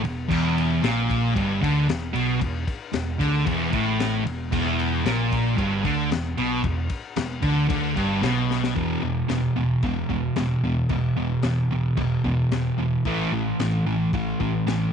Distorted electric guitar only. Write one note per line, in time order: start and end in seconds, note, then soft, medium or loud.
0.03 0.24 E2 medium
0.28 0.81 E2 loud
0.82 1.34 A#2 loud
1.34 1.60 G2 loud
1.61 1.87 D3 loud
1.88 2.09 E2 medium
2.13 2.39 B2 loud
2.40 2.61 E2 medium
2.93 3.14 E2 medium
3.19 3.45 D3 loud
3.46 3.72 E2 loud
3.71 4.24 A2 loud
4.24 4.46 E2 medium
4.52 5.04 E2 loud
5.04 5.57 A#2 loud
5.56 5.83 G2 loud
5.84 6.10 D3 loud
6.11 6.32 E2 medium
6.38 6.63 B2 loud
6.63 6.85 E2 medium
7.17 7.38 E2 medium
7.42 7.67 D3 medium
7.69 7.95 D3 loud
7.95 8.22 G2 medium
8.22 8.74 B2 loud
8.75 9.01 E2 medium
8.75 9.01 B2 medium
8.75 9.01 E3 medium
9.02 9.27 E2 medium
9.02 9.27 B2 medium
9.29 9.53 E2 medium
9.29 9.54 B2 medium
9.56 9.80 E2 medium
9.56 9.81 B2 medium
9.83 10.07 E2 medium
9.83 10.08 B2 loud
10.09 10.34 E2 medium
10.09 10.34 B2 medium
10.36 10.61 E2 medium
10.36 10.61 B2 medium
10.64 10.88 E2 medium
10.64 10.88 B2 medium
10.90 11.15 E2 medium
10.90 11.15 B2 medium
11.17 11.41 E2 medium
11.17 11.42 B2 medium
11.43 11.68 E2 medium
11.43 11.68 B2 medium
11.71 11.95 E2 medium
11.71 11.96 B2 medium
11.97 12.22 E2 medium
11.97 12.22 B2 medium
12.24 12.49 E2 medium
12.24 12.49 B2 medium
12.52 12.76 E2 medium
12.52 12.76 B2 medium
12.78 13.03 E2 medium
12.78 13.03 B2 medium
13.05 13.31 A2 medium
13.05 13.31 E3 medium
13.05 13.31 A3 medium
13.33 13.57 A2 medium
13.33 13.57 E3 medium
13.60 13.84 A2 medium
13.60 13.84 E3 medium
13.86 14.11 A2 medium
13.86 14.11 E3 medium
14.14 14.38 A2 medium
14.14 14.38 E3 medium
14.40 14.64 A2 medium
14.40 14.64 E3 medium
14.67 14.91 A2 medium
14.67 14.91 E3 medium